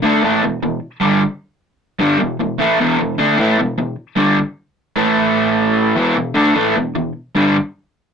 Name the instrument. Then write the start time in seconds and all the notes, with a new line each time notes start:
overdriven electric guitar
0.02 D3 A3 D4
0.23 A2 E3 A3
0.42 E2 B2
0.63 E2 B2
1.00 G2 D3 G3
1.99 G2 D3 G3
2.19 E2 B2
2.40 E2 B2
2.59 A2 E3 A3
2.80 E2 B2 E3
2.99 E2 B2
3.18 D3 A3 D4
3.38 A2 E3 A3
3.58 E2 B2
3.78 E2 B2
4.16 G2 D3 G3
4.96 A2 E3 A3
5.96 E2 B2 E3
6.16 E2 B2
6.34 D3 A3 D4
6.55 A2 E3 A3
6.76 E2 B2
6.95 E2 B2
7.35 G2 D3 G3